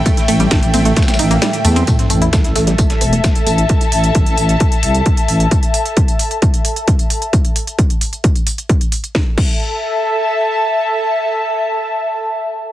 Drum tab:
CC |--------------------------------|--------------------------------|--------------------------------|--------------------------------|
RD |x---x---x---x---x---x---x---x---|--------------------------------|--------------------------------|--------------------------------|
HH |x-x-o-x-x-x-o-x-x-x-o-x-x-x-o-x-|x-x-o-x-x-x-o-x-x-x-o-x-x-x-o-x-|x-x-o-x-x-x-o-x-x-x-o-x-x-x-o-x-|x-x-o-x-x-x-o-x-x-x-o-x-x-x-o-x-|
TB |x---x---x---x---xxxxx---x---x---|x---x---x---x---x---x---x---x---|--------------------------------|--------------------------------|
SD |--o-----o-------oooo----o-------|--o-----o-o-o-o---o-----o-------|--------------------------------|--------------------------------|
T2 |o-----o-----o-----o-----o-----o-|--------------------------------|--------------------------------|--------------------------------|
BD |o-------o-------o---------------|o-------o-------o-------o-------|o-------o-------o-------o-------|o-------o-------o-------o-------|

CC |--------------------------------|----x---------------------------|--------------------------------|
RD |--------------------------------|--------------------------------|--------------------------------|
HH |x-x-o-x-x-x-o-x-x-x-o-x-x-x-o-x-|--------------------------------|--------------------------------|
TB |--------------------------------|--------------------------------|--------------------------------|
SD |--------------------------------|o-------------------------------|--------------------------------|
T2 |--------------------------------|--------------------------------|--------------------------------|
BD |o-------o-------o-------o-------|o---o---------------------------|--------------------------------|